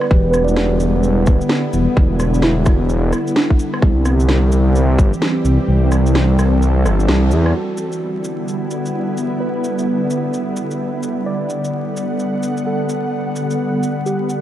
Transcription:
Already playing: ambient pad G3, synth keys B4 D5
0.01 cross-stick
0.10 detuned saw bass E1, ambient pad D3 B3 E4, synth keys G4, kick
0.31 synth keys B4, cross-stick, shaker
0.44 synth keys D5, shaker
0.57 snare
0.80 detuned saw bass E1, shaker
1.03 shaker
1.26 detuned saw bass D1, kick, shaker
1.41 shaker
1.49 snare
1.73 detuned saw bass E1, shaker
1.97 detuned saw bass E1, kick
2.20 cross-stick, shaker
2.34 shaker
2.42 synth keys E4, snare
2.66 detuned saw bass E1, kick, cross-stick, shaker
2.89 shaker
3.13 cross-stick, shaker
3.27 shaker
3.36 synth keys D4, snare
3.50 kick
3.59 shaker
3.74 cross-stick
3.82 detuned saw bass C2, ambient pad E3 G3 C4 G4, kick
4.05 cross-stick, shaker
4.20 shaker
4.29 snare
4.52 detuned saw bass C2, shaker
4.75 shaker
4.98 detuned saw bass G1, kick, shaker
5.13 shaker
5.22 snare
5.45 detuned saw bass C2, shaker
5.68 detuned saw bass C2, ambient pad A4
5.92 cross-stick, shaker
6.07 shaker
6.15 snare
6.39 detuned saw bass C2, cross-stick, shaker
6.62 shaker
6.85 detuned saw bass G1, cross-stick, shaker
7.00 shaker
7.08 detuned saw bass C2, snare
7.31 detuned saw bass E2, shaker
7.46 cross-stick
7.54 ambient pad D3 G3 B3 E4, synth keys F#4
7.78 shaker
7.92 shaker
8.24 shaker
8.48 shaker
8.71 shaker
8.86 shaker
9.17 shaker
9.40 synth keys B4
9.64 shaker
9.79 shaker
10.10 shaker
10.34 shaker
10.56 shaker
10.71 shaker
11.03 shaker
11.26 ambient pad B3 F#5, synth keys D5
11.50 shaker
11.64 shaker
11.97 shaker
12.19 shaker
12.43 shaker
12.57 shaker
12.66 synth keys A4
12.89 shaker
13.36 shaker
13.51 shaker
13.83 shaker
14.06 synth keys G4, shaker
14.30 shaker

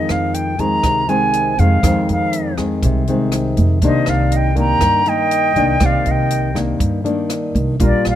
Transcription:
Already playing: nylon-string guitar F2 D#3 G#3 C4, flute D#5
0.09 upright bass F2, flute F5, cross-stick, closed hi-hat
0.34 flute G5, closed hi-hat
0.59 nylon-string guitar D#3 G#3 C4, flute A#5, kick, closed hi-hat
0.83 upright bass C2, nylon-string guitar C3, kick, cross-stick, closed hi-hat
1.08 nylon-string guitar D#3 G#3 C4, flute G#5, closed hi-hat
1.33 closed hi-hat
1.58 upright bass F2, nylon-string guitar D#3 G#3 C4, flute F5, kick, closed hi-hat
1.83 nylon-string guitar F2 D#3 G#3 C4, upright bass F2, kick, cross-stick, closed hi-hat
2.09 upright bass F2, flute F5, closed hi-hat
2.33 closed hi-hat
2.57 nylon-string guitar D#3 G#3 C4, kick, cross-stick, closed hi-hat
2.83 upright bass C2, nylon-string guitar C3, kick, closed hi-hat
3.07 nylon-string guitar D#3 G#3 C4, closed hi-hat
3.32 cross-stick, closed hi-hat
3.57 upright bass F2, kick, closed hi-hat
3.82 upright bass C2, nylon-string guitar C3 D#3 A#3 D4, flute C5 D#5, kick, closed hi-hat
4.06 upright bass C2, flute D5 F5, cross-stick, closed hi-hat
4.32 flute D#5, closed hi-hat
4.36 flute G5
4.55 nylon-string guitar D#3 A#3 D4, flute G5 A#5, kick, closed hi-hat
4.81 nylon-string guitar G2, upright bass G2, kick, cross-stick, closed hi-hat
5.06 nylon-string guitar D#3 A#3, flute D#5 G5, closed hi-hat
5.31 closed hi-hat
5.56 upright bass C2, nylon-string guitar D#3 A#3 D4, kick, closed hi-hat
5.80 upright bass C2, nylon-string guitar C3 D#3 A#3, flute D5, kick, cross-stick, closed hi-hat
5.86 flute F5
6.06 upright bass C2, flute D#5, closed hi-hat
6.11 flute G5
6.31 closed hi-hat
6.55 nylon-string guitar D#3 A#3 D4, kick, cross-stick, closed hi-hat
6.79 nylon-string guitar G2, upright bass G2, kick, closed hi-hat
7.04 nylon-string guitar D#3 A#3 D4, closed hi-hat
7.30 cross-stick, closed hi-hat
7.55 upright bass C2, kick, closed hi-hat
7.80 upright bass A#1, nylon-string guitar A#2 G3 D4 F4, flute A#4, kick, closed hi-hat
7.85 flute D5
8.05 upright bass A#1, flute D5, cross-stick, closed hi-hat
8.09 flute F5

